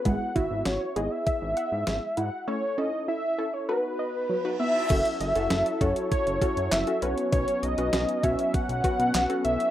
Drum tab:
CC |----------------|----------------|x---------------|----------------|
HH |x-x-x-x-x-x-x-x-|----------------|xxxxxxxxxxxxxxxx|xxxxxxxxxxxxxxxx|
CP |----------------|----------------|------------x---|------------x---|
SD |----o-------o---|----------------|----o-------o---|----o-------o---|
BD |o-o-----o-------|----------------|o-----o-o-o-----|o-----o-o-o-----|